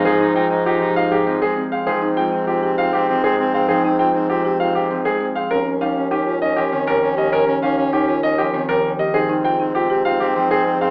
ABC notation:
X:1
M:6/4
L:1/8
Q:1/4=198
K:Ab
V:1 name="Grand piano"
A z g z G z f G z A z f | A z g z G z f G z A z f | A z g z G z f G z A z f | B z f z G z e G z B z e |
B z f z G z e G z B z e | A z g z G z f G z A z f |]
V:2 name="Marimba"
E E F E F G F A C z C A | E E F E F G F z C z C A | E E F E F G F z C z C A | D D E D E F E z C z2 G |
D D E D E F E z C z2 G | E E F E F G F z4 A |]
V:3 name="Soprano saxophone"
E E E E E E E E E E E z | C C C C C C C C C C C C | C C C C C C C C C C C z | D D D D D D D D D D D D |
D D D D D D D D D D D z | C C C C C C C C C C C C |]
V:4 name="Harp" clef=bass
[F,G,A,C]2 A,3 F,2 G, F, A,2 C | F,2 A,4- A, G, F, A,2 C | F,2 A,4- A, G, F, A,2 C | z2 G,4- G, F, E, G,2 B,- |
B,2 G,4- G, F, E, G,2 B, | z2 A,4- A, G, F,3 C |]
V:5 name="Bassoon" clef=bass
A,,12 | A,,12- | A,,12 | E,,12- |
E,,12 | A,,12 |]